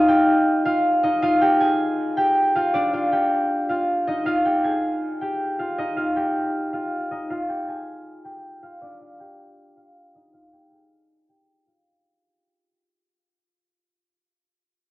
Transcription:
0.00 1.04 D#4 medium
0.00 0.66 F4 medium
0.00 1.03 D#5 loud
0.00 0.65 F5 medium
0.08 1.42 G4 medium
0.08 1.41 G5 medium
0.65 1.23 F4 medium
0.65 1.22 F5 medium
1.03 2.80 D#4 medium
1.03 2.80 D#5 medium
1.22 2.56 F4 medium
1.22 2.55 F5 loud
1.41 1.66 G4 medium
1.41 1.66 G5 medium
1.60 2.23 G#4 medium
1.60 2.23 G#5 medium
2.17 3.12 G4 medium
2.17 3.12 G5 medium
2.55 2.94 F4 medium
2.55 2.93 F5 medium
2.74 4.13 D4 medium
2.74 4.13 D5 loud
2.93 3.69 F4 medium
2.93 3.69 F5 medium
3.12 4.45 G4 medium
3.12 4.45 G5 medium
3.69 4.26 F4 medium
3.69 4.25 F5 medium
4.07 5.79 D#4 medium
4.07 5.78 D#5 medium
4.26 5.59 F4 medium
4.26 5.59 F5 loud
4.45 4.70 G4 medium
4.45 4.70 G5 medium
4.64 5.27 G#4 medium
4.64 5.27 G#5 medium
5.21 6.16 G4 medium
5.21 6.15 G5 medium
5.59 5.97 F4 medium
5.59 5.96 F5 medium
5.78 7.11 D#4 medium
5.78 7.11 D#5 loud
5.97 6.73 F4 medium
5.97 6.72 F5 medium
6.16 7.49 G4 medium
6.16 7.49 G5 medium
6.73 7.31 F4 medium
6.73 7.30 F5 medium
7.11 8.88 D#4 medium
7.11 8.88 D#5 medium
7.30 8.63 F4 medium
7.30 8.62 F5 loud
7.49 7.74 G4 medium
7.49 7.74 G5 medium
7.68 8.31 G#4 medium
7.68 8.31 G#5 medium
8.25 9.20 G4 medium
8.25 9.19 G5 medium
8.63 9.01 F4 medium
8.63 9.00 F5 medium
8.82 10.21 D4 medium
8.82 10.21 D5 loud
9.02 9.77 F4 medium
9.20 10.53 G4 medium
9.20 10.52 G5 medium
9.77 10.34 F4 medium
9.77 10.33 F5 medium
10.15 12.86 D#4 medium
10.15 11.93 D#5 medium
10.33 11.67 F4 medium
10.33 11.66 F5 loud
10.53 10.78 G4 medium
10.53 10.77 G5 medium
10.71 11.35 G#4 medium
10.71 11.35 G#5 medium
11.29 13.65 G4 medium
11.29 12.84 G5 medium
11.67 14.20 F4 medium
11.67 13.33 F5 medium

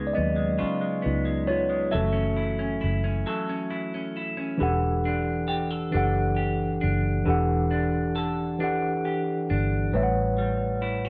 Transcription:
0.00 0.13 C#2 medium
0.00 0.57 C#3 medium
0.00 0.35 G#3 medium
0.00 1.89 G#3 medium
0.00 0.14 B3 medium
0.00 1.04 B3 soft
0.00 1.05 D#4 medium
0.00 0.57 F4 medium
0.00 0.11 G#4 medium
0.07 0.14 D5 medium
0.13 1.45 F#3 medium
0.13 1.01 B3 medium
0.13 1.52 D#5 medium
0.18 0.57 D#2 medium
0.36 0.80 G#3 medium
0.58 2.01 C#3 medium
0.58 2.01 F4 medium
0.62 muted fingered electric bass stroke soft
0.81 1.24 G#3 medium
1.02 1.96 C#2 medium
1.02 1.46 B3 medium
1.02 1.45 B3 soft
1.02 1.46 D#4 medium
1.02 1.45 F4 medium
1.25 1.68 G#3 medium
1.47 2.01 B3 medium
1.47 1.70 F4 medium
1.47 1.68 C#5 loud
1.70 1.91 G#3 medium
1.91 2.79 F#1 loud
1.91 3.23 E3 medium
1.91 3.26 F#3 medium
1.91 3.23 A3 soft
1.91 3.23 C#4 medium
1.91 3.27 A4 medium
1.91 3.67 A4 medium
1.91 3.66 E5 medium
2.13 2.58 C#4 medium
2.37 2.81 E4 medium
2.59 3.03 C#4 medium
2.81 3.23 F#1 medium
2.81 3.70 E4 medium
3.04 3.48 C#4 medium
3.26 5.51 F#3 medium
3.26 5.47 A4 medium
3.49 3.93 C#4 medium
3.71 4.16 E4 medium
3.94 4.36 C#4 medium
4.17 5.08 E4 medium
4.37 4.68 C#4 medium
4.58 5.90 E1 loud
4.58 5.63 E3 medium
4.58 7.25 E3 medium
4.58 5.64 D4 medium
4.58 5.64 G4 medium
4.58 5.65 A4 medium
4.63 5.65 F#5 loud
5.05 5.91 D4 medium
5.48 5.71 G4 medium
5.71 8.14 A4 medium
5.91 6.79 F#1 loud
5.91 6.96 E3 medium
5.91 6.80 D4 medium
5.91 6.97 D4 medium
5.91 6.98 G4 medium
5.95 6.98 A4 medium
5.95 6.99 F#5 loud
6.36 9.05 G4 medium
6.81 7.23 F#1 loud
6.81 7.70 D4 medium
7.24 9.45 E1 loud
7.24 8.29 E3 medium
7.24 10.76 E3 loud
7.24 8.30 D4 medium
7.24 8.31 G4 medium
7.24 8.31 A4 medium
7.30 8.32 F#5 loud
7.71 8.59 D4 medium
8.16 10.41 A4 medium
8.59 9.63 E3 loud
8.59 9.64 D4 medium
8.59 9.49 D4 medium
8.59 9.64 G4 medium
8.59 9.65 A4 medium
8.64 9.66 F#5 medium
9.05 10.81 G4 medium
9.50 9.90 G1 loud
9.50 10.03 D4 medium
9.91 10.96 A2 loud
9.91 11.09 A2 medium
9.91 10.97 G3 medium
9.91 10.97 B4 medium
9.91 10.98 C#5 medium
9.95 11.09 A1 loud
9.95 10.01 E5 medium
10.03 11.02 F#5 loud
10.38 11.09 G3 medium
10.82 11.05 E4 medium
11.05 11.09 F#4 medium

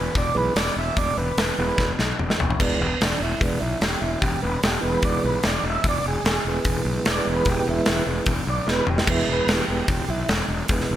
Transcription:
0.00 0.15 B4 medium
0.15 0.28 E1 medium
0.15 0.37 D5 medium
0.15 kick loud
0.15 open hi-hat medium
0.34 0.48 B1 medium
0.34 0.53 E3 soft
0.34 0.54 G#3 soft
0.34 0.53 B3 medium
0.34 0.57 B4 medium
0.56 0.68 E1 medium
0.56 0.76 D5 medium
0.56 snare medium
0.56 open hi-hat medium
0.76 0.89 E1 loud
0.76 0.98 E5 medium
0.97 1.09 E1 medium
0.97 1.17 D5 loud
0.97 kick loud
0.97 open hi-hat medium
1.17 1.30 E1 loud
1.17 1.93 B4 loud
1.37 1.50 E1 medium
1.37 snare loud
1.37 open hi-hat medium
1.58 1.71 E1 medium
1.58 1.85 E3 soft
1.58 1.86 G#3 medium
1.58 1.86 B3 medium
1.78 1.91 E1 medium
1.78 kick loud
1.78 snare medium
1.99 2.11 B1 medium
1.99 snare medium
2.19 2.32 E1 medium
2.19 mid tom medium
2.30 snare medium
2.40 2.52 E1 medium
2.40 floor tom medium
2.50 floor tom loud
2.59 2.72 E1 loud
2.59 2.86 E3 medium
2.59 2.87 G#3 medium
2.59 2.82 B3 medium
2.59 2.80 D4 medium
2.59 kick loud
2.59 crash loud
2.81 2.93 E1 loud
2.81 3.02 B3 medium
3.00 3.13 E1 medium
3.00 3.22 D4 medium
3.00 snare loud
3.00 open hi-hat medium
3.20 3.33 E1 medium
3.20 3.42 E4 medium
3.40 3.53 E1 medium
3.40 3.59 E3 medium
3.40 3.59 G#3 soft
3.40 3.60 B3 medium
3.40 kick loud
3.40 open hi-hat medium
3.44 3.62 D4 medium
3.60 3.74 B1 medium
3.60 3.80 E4 medium
3.81 3.93 E1 medium
3.81 4.02 G4 medium
3.81 snare loud
3.81 open hi-hat medium
4.01 4.14 E1 medium
4.01 4.21 E4 medium
4.20 4.35 E1 medium
4.20 4.41 G4 loud
4.20 kick loud
4.20 open hi-hat medium
4.42 4.55 E1 loud
4.42 4.62 B4 medium
4.63 4.75 E1 medium
4.63 4.83 G4 medium
4.63 snare loud
4.63 open hi-hat medium
4.80 4.95 E1 medium
4.80 5.39 E3 medium
4.80 5.40 G#3 soft
4.80 5.40 B3 medium
4.80 5.03 B4 medium
5.02 5.15 E1 medium
5.02 5.24 D5 medium
5.02 kick loud
5.02 open hi-hat medium
5.24 5.36 B1 medium
5.24 5.45 B4 medium
5.43 5.56 E1 medium
5.43 snare loud
5.43 open hi-hat medium
5.48 5.65 D5 medium
5.63 5.76 E1 loud
5.70 5.87 E5 medium
5.84 5.97 E1 loud
5.84 kick loud
5.84 open hi-hat medium
5.88 6.06 D5 loud
6.04 6.16 E1 medium
6.08 6.81 G#4 loud
6.24 6.36 E1 medium
6.24 snare loud
6.24 open hi-hat medium
6.45 6.57 E1 medium
6.45 8.04 E3 medium
6.45 8.04 G#3 soft
6.45 7.68 B3 medium
6.65 6.77 E1 medium
6.65 kick loud
6.65 open hi-hat medium
6.85 6.97 B1 medium
7.05 7.18 E1 medium
7.05 7.07 C#5 medium
7.05 snare loud
7.05 open hi-hat medium
7.11 7.28 D5 medium
7.27 7.39 E1 medium
7.33 7.49 B4 loud
7.45 7.58 E1 loud
7.45 kick loud
7.45 open hi-hat medium
7.51 7.68 G4 loud
7.67 7.79 E1 medium
7.67 8.05 B3 medium
7.67 8.08 E4 loud
7.86 7.99 E1 medium
7.86 snare loud
7.86 open hi-hat medium
8.06 8.19 E1 medium
8.06 8.33 E3 medium
8.06 8.34 G#3 soft
8.06 8.34 B3 medium
8.26 8.39 E1 medium
8.26 kick loud
8.26 open hi-hat medium
8.47 8.59 B1 medium
8.47 8.68 D5 loud
8.67 8.79 E1 medium
8.67 8.86 E3 soft
8.67 8.86 G#3 soft
8.67 8.87 B3 medium
8.67 8.69 A#4 medium
8.67 snare medium
8.72 8.90 B4 loud
8.87 9.00 E1 medium
8.87 9.08 G4 medium
8.87 mid tom medium
8.98 snare medium
9.07 9.20 E1 medium
9.07 9.66 E3 medium
9.07 9.66 G#3 medium
9.07 9.67 B3 medium
9.07 kick loud
9.07 crash loud
9.11 9.29 E4 loud
9.19 snare soft
9.27 9.40 E1 medium
9.33 9.50 B4 medium
9.47 9.60 E1 medium
9.47 snare loud
9.47 open hi-hat medium
9.53 10.10 G4 medium
9.68 9.80 E1 medium
9.68 9.87 E3 soft
9.68 9.87 G#3 soft
9.68 9.88 B3 medium
9.88 10.00 E1 medium
9.88 kick loud
9.88 open hi-hat medium
10.08 10.21 B1 medium
10.08 10.29 E4 loud
10.29 10.41 E1 medium
10.29 snare medium
10.29 open hi-hat medium
10.48 10.61 E1 loud
10.68 10.82 E1 loud
10.68 10.96 E3 medium
10.68 10.96 G#3 medium
10.68 10.96 B3 medium
10.68 kick loud
10.68 open hi-hat medium
10.80 snare soft
10.91 10.96 E1 medium

